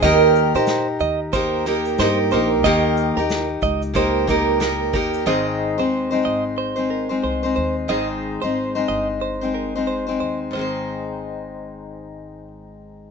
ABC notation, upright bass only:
X:1
M:4/4
L:1/16
Q:"Swing 16ths" 1/4=91
K:Ab
V:1 name="Upright bass" clef=bass
E,,3 B,,3 E,,6 G,,2 B,,,2 | E,,3 E,,3 D,,8 E,,2 | A,,,3 E,,3 A,,,6 C,,2 E,,2 | A,,,3 A,,,3 G,,,8 E,,2 |
A,,,16 |]